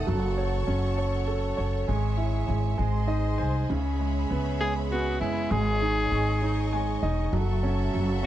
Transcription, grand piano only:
0.07 1.84 F#3 medium
0.38 0.97 C#5 medium
0.67 1.85 C#4 medium
0.98 1.56 C#5 medium
1.28 1.86 A4 medium
1.57 1.87 C#5 medium
1.88 2.46 G#3 medium
2.17 2.77 E4 medium
2.48 2.76 G#3 medium
2.78 3.66 G#3 medium
3.07 3.67 D#4 medium
3.07 3.37 D#5 medium
3.38 3.68 C5 medium
3.38 3.67 G#5 medium
3.70 5.47 C#3 medium
4.00 4.59 G#3 medium
4.30 4.90 B3 medium
4.61 5.20 G#3 medium
4.91 5.49 B3 medium
5.21 5.50 G#3 medium
5.52 6.10 G#3 medium
5.82 6.41 D#4 medium
6.12 6.72 G#3 medium
6.42 7.02 D#4 medium
6.73 7.31 G#3 medium
6.73 7.00 G#5 medium
7.03 7.32 D#4 medium
7.03 7.31 D#5 medium
7.33 7.91 F#3 medium
7.63 8.22 C#4 medium
7.93 8.26 F#3 medium
8.23 8.26 C#4 medium

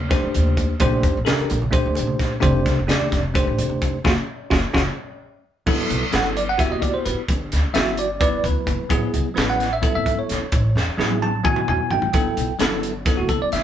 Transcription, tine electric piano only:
0.09 0.72 A3 medium
0.09 0.73 D4 medium
0.09 0.73 G4 medium
0.09 0.73 C5 medium
0.80 1.17 A3 medium
0.80 1.17 D4 medium
0.80 1.17 G4 medium
0.80 1.18 C5 medium
1.25 1.58 D4 medium
1.25 1.58 G4 medium
1.25 1.57 A4 medium
1.25 1.58 A#4 medium
1.71 2.34 A3 medium
1.71 2.34 D4 medium
1.71 2.35 G4 medium
1.71 2.35 C5 medium
2.40 2.79 A3 medium
2.40 2.79 D4 medium
2.40 2.79 G4 medium
2.40 2.79 C5 medium
2.87 3.19 A3 medium
2.87 3.20 D4 medium
2.87 3.20 G4 medium
2.87 3.20 D5 medium
3.34 3.97 A3 medium
3.34 3.97 D4 medium
3.34 3.97 G4 medium
3.34 3.98 C5 medium
4.05 4.12 C#4 medium
4.05 4.12 F4 medium
4.05 4.12 F#4 medium
4.50 4.58 C#4 medium
4.50 4.58 F4 medium
4.50 4.58 F#4 medium
4.73 4.81 C#4 medium
4.73 4.81 F4 medium
4.73 4.82 F#4 medium
5.66 6.04 F#3 medium
5.66 6.04 B3 medium
5.66 6.04 E4 medium
5.66 6.04 A4 medium
6.11 6.43 F#3 medium
6.11 6.44 B3 medium
6.11 6.44 E4 soft
6.11 6.24 A4 medium
6.16 6.26 F#5 medium
6.25 6.36 A4 medium
6.37 6.48 D5 medium
6.49 6.60 F#5 medium
6.58 7.21 B3 medium
6.58 7.21 E4 medium
6.58 7.21 F#4 medium
6.58 7.22 G4 medium
6.58 6.71 E5 medium
6.72 6.83 D#5 medium
6.82 6.94 D5 medium
6.94 7.05 C5 medium
7.05 7.20 B4 medium
7.74 8.06 F#3 medium
7.74 8.06 B3 medium
7.74 8.06 E4 medium
7.74 8.06 F#4 medium
7.74 7.97 E5 medium
7.99 8.20 D5 medium
8.20 8.83 F#3 medium
8.20 8.84 B3 medium
8.20 8.84 E4 medium
8.20 8.44 B4 medium
8.20 8.44 D5 medium
8.46 9.11 B4 medium
8.89 9.27 F#3 medium
8.89 9.28 B3 medium
8.89 9.28 E4 medium
8.89 9.28 G#4 medium
9.34 9.67 F#3 medium
9.34 9.67 B3 medium
9.34 9.68 E4 medium
9.34 9.68 B4 medium
9.50 9.72 F#5 medium
9.73 9.94 E5 medium
9.82 10.45 F#3 medium
9.82 10.45 B3 medium
9.82 10.45 E4 medium
9.82 10.45 A4 medium
9.95 10.18 E5 medium
10.19 10.84 C#5 medium
10.98 11.29 F#3 medium
10.98 11.30 B3 medium
10.98 11.30 E4 medium
10.98 11.30 G#4 medium
11.22 11.45 A5 medium
11.44 12.06 F#3 medium
11.44 12.06 B3 medium
11.44 12.07 E4 medium
11.44 12.07 F#4 medium
11.44 11.67 G#5 medium
11.69 11.91 G#5 medium
11.91 12.57 G5 medium
12.13 12.51 F#3 medium
12.13 12.51 B3 medium
12.13 12.52 E4 medium
12.13 12.52 A4 medium
12.59 12.91 F#3 medium
12.59 12.91 B3 medium
12.59 12.91 E4 medium
12.59 12.92 A4 medium
13.05 13.63 F#3 medium
13.05 13.63 B3 medium
13.05 13.63 E4 medium
13.05 13.28 A4 medium
13.17 13.29 F#4 medium
13.29 13.40 A4 medium
13.42 13.53 D5 medium
13.53 13.63 E5 medium

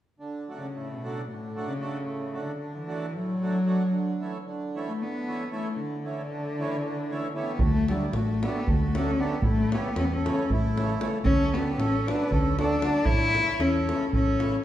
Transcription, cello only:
0.55 0.95 C#3 medium
0.93 1.29 B2 medium
1.28 1.66 A2 medium
1.67 2.43 C#3 medium
2.41 2.77 D3 medium
2.77 3.15 E3 medium
3.14 4.42 F#3 medium
4.87 5.04 A3 medium
5.02 5.54 B3 medium
5.55 5.78 A3 medium
5.77 7.36 D3 medium
7.37 7.61 B3 medium
7.60 7.91 A3 loud
7.90 8.16 G3 medium
8.14 8.45 A3 medium
8.44 8.70 B3 medium
8.68 8.98 A3 medium
8.96 9.22 C#4 medium
9.20 9.43 B3 medium
9.45 9.76 A3 loud
9.74 9.99 B3 medium
9.98 10.06 C#4 medium
10.05 10.15 B3 medium
10.14 10.51 C#4 medium
10.50 11.07 A3 medium
11.24 11.55 C#4 loud
11.54 11.79 B3 medium
11.78 12.08 C#4 loud
12.07 12.33 D4 medium
12.32 12.59 C#4 medium
12.60 13.07 D4 loud
13.06 13.62 E4 loud
13.60 14.13 C#4 loud
14.13 14.64 C#4 loud

